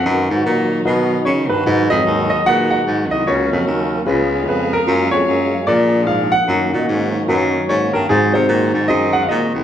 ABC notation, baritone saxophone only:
X:1
M:4/4
L:1/8
Q:"Swing" 1/4=149
K:G#dor
V:1 name="Baritone saxophone" clef=bass
F,, G,, A,,2 B,,2 C, =G,, | G,, E,, D,,2 A,,2 G,, ^B,,, | C,, E,, D,,2 C,,2 E,,2 | F,, E,, F,,2 A,,2 G,, z |
F,, A,, G,,2 F,,2 G,, =G,, | G,, ^B,, A,, G,, F,,2 A,, ^B,,, |]